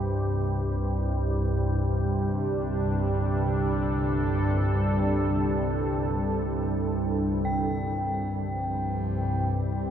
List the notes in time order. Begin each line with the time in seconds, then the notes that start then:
Already playing: C2 G2 G3 G4
0.67 D4
2.21 A4
7.45 C2 G2 D#3 C4 G5
8.52 F3
8.73 G5
9.55 G3